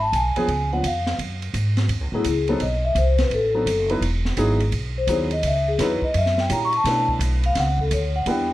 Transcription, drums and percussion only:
0.13 hi-hat pedal, ride
0.36 ride
0.48 ride
0.84 hi-hat pedal, ride
1.07 snare
1.19 ride
1.42 ride
1.54 hi-hat pedal, ride
1.77 snare, ride
1.89 ride
2.24 hi-hat pedal, ride
2.48 ride
2.60 ride
2.96 hi-hat pedal, ride
3.18 snare, ride
3.31 ride
3.67 hi-hat pedal, ride
3.89 ride
4.02 ride
4.25 snare
4.37 hi-hat pedal, ride
4.60 ride
4.72 ride
5.08 hi-hat pedal, ride
5.31 ride
5.43 ride
5.79 snare, hi-hat pedal, ride
6.02 kick
6.14 ride
6.26 snare
6.38 snare
6.50 hi-hat pedal, ride
6.73 ride
6.85 snare, ride
7.09 kick
7.21 hi-hat pedal, ride
7.44 ride
7.55 snare, ride
7.79 kick
7.91 hi-hat pedal, ride
8.26 ride

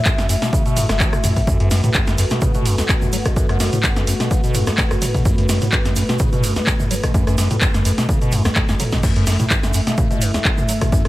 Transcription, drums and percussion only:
0.05 kick, clap, shaker
0.18 snare, closed hi-hat, shaker
0.29 open hi-hat, ride, shaker
0.42 snare, closed hi-hat, shaker
0.53 kick, shaker
0.66 closed hi-hat, shaker
0.77 mid tom, open hi-hat, ride, shaker
0.89 cross-stick, snare, closed hi-hat, shaker
1.00 kick, clap, shaker
1.13 cross-stick, closed hi-hat, shaker
1.24 mid tom, open hi-hat, ride, shaker
1.36 kick, open hi-hat, shaker
1.47 kick, shaker
1.60 closed hi-hat
1.71 snare, open hi-hat, ride, shaker
1.84 closed hi-hat, mid tom, shaker
1.94 kick, clap, shaker
2.07 snare, closed hi-hat, shaker
2.18 open hi-hat, ride, shaker
2.30 snare, closed hi-hat, shaker
2.41 kick, mid tom, shaker
2.54 closed hi-hat, mid tom, shaker
2.66 open hi-hat, ride, shaker
2.78 snare, closed hi-hat, shaker
2.89 kick, clap, shaker
3.02 mid tom, shaker
3.13 open hi-hat, ride, shaker
3.25 kick, cross-stick, closed hi-hat, shaker
3.36 kick, shaker
3.49 cross-stick, closed hi-hat
3.60 snare, open hi-hat, ride, shaker
3.73 closed hi-hat, mid tom, shaker
3.83 kick, clap, shaker
3.96 snare, closed hi-hat, shaker
4.07 open hi-hat, ride, shaker
4.20 snare, closed hi-hat, shaker
4.31 kick, shaker
4.44 closed hi-hat, shaker
4.54 mid tom, open hi-hat, ride, shaker
4.67 cross-stick, snare, closed hi-hat, shaker
4.78 kick, clap, shaker
4.91 cross-stick, closed hi-hat, shaker
5.02 mid tom, open hi-hat, ride, shaker
5.15 kick, open hi-hat, shaker
5.25 kick, shaker
5.38 closed hi-hat
5.49 snare, open hi-hat, ride, shaker
5.61 closed hi-hat, mid tom, shaker
5.72 kick, clap, shaker
5.85 snare, closed hi-hat, shaker
5.96 open hi-hat, ride, shaker
6.09 snare, closed hi-hat, shaker
6.19 kick, mid tom, shaker
6.32 closed hi-hat, mid tom, shaker
6.44 open hi-hat, ride, shaker
6.56 snare, closed hi-hat, shaker
6.67 kick, clap, shaker
6.80 mid tom, shaker
6.91 open hi-hat, ride, shaker
7.03 kick, cross-stick, closed hi-hat, shaker
7.14 kick, shaker
7.27 cross-stick, closed hi-hat, shaker
7.38 snare, open hi-hat, ride, shaker
7.51 closed hi-hat, mid tom, shaker
7.61 kick, clap, shaker
7.74 snare, closed hi-hat, shaker
7.85 open hi-hat, ride, shaker
7.98 snare, closed hi-hat, shaker
8.09 kick, shaker
8.22 closed hi-hat, shaker
8.32 mid tom, open hi-hat, ride, shaker
8.45 cross-stick, snare, closed hi-hat, shaker
8.56 kick, snare, clap, shaker
8.69 snare, closed hi-hat, shaker
8.80 mid tom, open hi-hat, ride, shaker
8.92 kick, snare, open hi-hat, shaker
9.03 kick, crash, shaker
9.16 closed hi-hat
9.27 snare, open hi-hat, ride, shaker
9.39 closed hi-hat, mid tom, shaker
9.50 kick, clap, shaker
9.63 snare, closed hi-hat, shaker
9.73 open hi-hat, ride, shaker
9.87 snare, closed hi-hat, shaker
9.98 kick, mid tom, shaker
10.11 closed hi-hat, mid tom, shaker
10.21 open hi-hat, ride, shaker
10.34 snare, closed hi-hat, shaker
10.45 kick, clap, shaker
10.58 mid tom, shaker
10.69 open hi-hat, ride, shaker
10.81 kick, cross-stick, closed hi-hat, shaker
10.92 kick, shaker
11.05 cross-stick, closed hi-hat

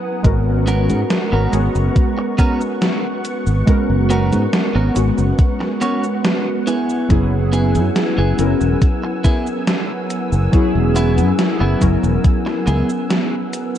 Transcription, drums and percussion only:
0.24 kick, closed hi-hat, cabasa
0.68 closed hi-hat, cabasa
0.90 closed hi-hat, cabasa
1.10 snare, closed hi-hat, cabasa
1.53 closed hi-hat, cabasa
1.75 cabasa
1.96 kick, closed hi-hat, cabasa
2.39 kick, closed hi-hat, cabasa
2.61 cabasa
2.82 snare, closed hi-hat, cabasa
3.25 closed hi-hat, cabasa
3.47 cabasa
3.67 kick, closed hi-hat, cabasa
4.10 closed hi-hat, cabasa
4.33 closed hi-hat, cabasa
4.53 snare, closed hi-hat, cabasa
4.96 closed hi-hat, cabasa
5.18 cabasa
5.39 kick, closed hi-hat, cabasa
5.61 snare
5.82 closed hi-hat, cabasa
6.04 cabasa
6.25 snare, closed hi-hat, cabasa
6.67 closed hi-hat, cabasa
6.90 cabasa
7.10 kick, closed hi-hat, cabasa
7.53 closed hi-hat, cabasa
7.75 closed hi-hat, cabasa
7.96 snare, closed hi-hat, cabasa
8.39 closed hi-hat, cabasa
8.61 cabasa
8.82 kick, closed hi-hat, cabasa
9.25 kick, closed hi-hat, cabasa
9.47 cabasa
9.67 snare, closed hi-hat, cabasa
10.10 closed hi-hat, cabasa
10.33 cabasa
10.53 kick, closed hi-hat, cabasa
10.96 closed hi-hat, cabasa
11.18 closed hi-hat, cabasa
11.39 snare, closed hi-hat, cabasa
11.82 kick, closed hi-hat, cabasa
12.04 cabasa
12.24 kick, closed hi-hat, cabasa
12.47 snare
12.67 closed hi-hat, cabasa
12.90 cabasa
13.10 snare, closed hi-hat, cabasa
13.53 closed hi-hat, cabasa

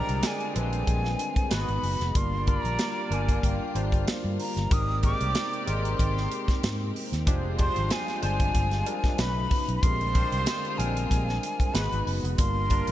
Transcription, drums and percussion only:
0.09 closed hi-hat
0.23 snare, closed hi-hat
0.40 closed hi-hat
0.56 closed hi-hat
0.73 closed hi-hat
0.87 kick, closed hi-hat
1.05 snare
1.19 closed hi-hat
1.36 kick, closed hi-hat
1.51 snare, closed hi-hat
1.68 closed hi-hat
1.83 open hi-hat
2.01 snare, closed hi-hat
2.15 kick, closed hi-hat
2.47 kick, closed hi-hat
2.65 closed hi-hat
2.79 snare, closed hi-hat
3.12 closed hi-hat
3.29 kick, closed hi-hat
3.43 kick, closed hi-hat
3.75 closed hi-hat
3.92 kick, closed hi-hat
4.08 snare, closed hi-hat
4.40 open hi-hat
4.57 snare, closed hi-hat
4.71 kick, closed hi-hat
5.03 kick, closed hi-hat
5.21 closed hi-hat
5.35 snare, closed hi-hat
5.53 closed hi-hat
5.68 closed hi-hat
5.85 closed hi-hat
5.99 kick, closed hi-hat
6.17 snare
6.32 closed hi-hat
6.48 kick, snare, closed hi-hat
6.63 snare, closed hi-hat
6.96 open hi-hat
7.13 snare, closed hi-hat
7.27 kick, closed hi-hat
7.59 kick, closed hi-hat
7.76 closed hi-hat
7.90 snare, closed hi-hat
8.08 snare, closed hi-hat
8.23 closed hi-hat
8.40 kick, closed hi-hat
8.55 kick, closed hi-hat
8.71 snare, closed hi-hat
8.86 closed hi-hat
9.04 kick, snare, closed hi-hat
9.18 snare, closed hi-hat
9.51 kick, open hi-hat
9.69 closed hi-hat
9.83 kick, closed hi-hat
10.01 closed hi-hat
10.15 kick, closed hi-hat
10.32 closed hi-hat
10.46 snare, closed hi-hat
10.65 closed hi-hat
10.80 closed hi-hat
10.97 closed hi-hat
11.11 kick, closed hi-hat
11.29 snare
11.43 closed hi-hat
11.60 kick, closed hi-hat
11.75 snare, closed hi-hat
11.93 closed hi-hat
12.07 open hi-hat
12.25 closed hi-hat
12.38 kick, closed hi-hat
12.70 kick, closed hi-hat
12.87 closed hi-hat

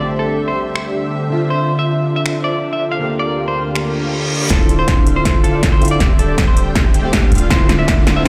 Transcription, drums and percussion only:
0.76 finger snap
2.26 finger snap
3.75 finger snap
4.50 kick, snare, closed hi-hat
4.69 closed hi-hat
4.88 kick, snare, closed hi-hat
5.07 closed hi-hat
5.25 kick, snare, closed hi-hat
5.44 closed hi-hat
5.63 kick, snare, closed hi-hat
5.82 closed hi-hat
5.85 closed hi-hat
5.88 closed hi-hat
6.00 kick, snare, closed hi-hat
6.19 closed hi-hat
6.38 kick, snare, closed hi-hat
6.57 closed hi-hat
6.75 kick, snare, closed hi-hat
6.94 closed hi-hat
7.13 kick, snare, closed hi-hat
7.32 closed hi-hat
7.35 closed hi-hat
7.38 closed hi-hat
7.50 kick, snare, closed hi-hat
7.69 snare, closed hi-hat
7.88 kick, snare, closed hi-hat
8.07 snare, closed hi-hat

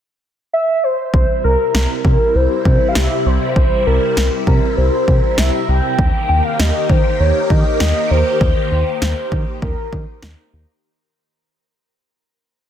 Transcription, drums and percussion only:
1.14 kick
1.75 snare
2.05 kick
2.65 kick
2.95 snare
3.56 kick
4.17 snare
4.47 kick
5.08 kick
5.38 snare
5.99 kick
6.60 snare
6.90 kick
7.50 kick
7.80 snare
8.41 kick
9.02 snare
9.32 kick
9.62 kick
9.93 kick
10.22 snare

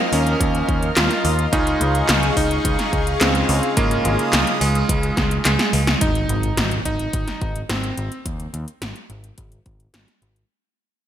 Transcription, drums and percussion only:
0.13 open hi-hat
0.27 closed hi-hat
0.40 kick, closed hi-hat
0.55 closed hi-hat
0.69 kick, closed hi-hat
0.83 closed hi-hat
0.97 snare, clap, closed hi-hat
1.11 snare, closed hi-hat
1.25 open hi-hat
1.39 closed hi-hat
1.53 kick, closed hi-hat
1.67 closed hi-hat
1.81 closed hi-hat
1.95 closed hi-hat
2.09 snare, clap, closed hi-hat
2.23 closed hi-hat
2.37 kick, open hi-hat
2.51 closed hi-hat
2.65 kick, closed hi-hat
2.79 snare, closed hi-hat
2.93 kick, closed hi-hat
3.07 closed hi-hat
3.21 snare, clap, closed hi-hat
3.35 closed hi-hat
3.49 open hi-hat
3.63 closed hi-hat
3.77 kick, closed hi-hat
3.91 closed hi-hat
4.05 closed hi-hat
4.19 closed hi-hat
4.33 snare, clap, closed hi-hat
4.47 closed hi-hat
4.61 open hi-hat
4.75 closed hi-hat
4.89 kick, closed hi-hat
5.03 closed hi-hat
5.17 kick, snare, closed hi-hat
5.31 closed hi-hat
5.45 snare, clap, closed hi-hat
5.59 snare, closed hi-hat
5.73 open hi-hat
5.87 snare, closed hi-hat
6.01 kick, closed hi-hat
6.15 closed hi-hat
6.29 closed hi-hat
6.43 closed hi-hat
6.57 snare, closed hi-hat
6.71 closed hi-hat
6.85 kick, closed hi-hat
6.99 closed hi-hat
7.13 kick, closed hi-hat
7.28 snare, closed hi-hat
7.41 kick, closed hi-hat
7.56 closed hi-hat
7.69 snare, closed hi-hat
7.84 closed hi-hat
7.98 closed hi-hat
8.12 closed hi-hat
8.26 kick, closed hi-hat
8.40 closed hi-hat
8.54 closed hi-hat
8.68 closed hi-hat
8.82 snare, closed hi-hat
8.96 closed hi-hat
9.10 closed hi-hat
9.24 closed hi-hat
9.38 kick, closed hi-hat
9.52 closed hi-hat
9.66 kick, closed hi-hat
9.80 closed hi-hat
9.94 snare, closed hi-hat
10.08 snare, closed hi-hat
10.22 closed hi-hat
10.36 closed hi-hat

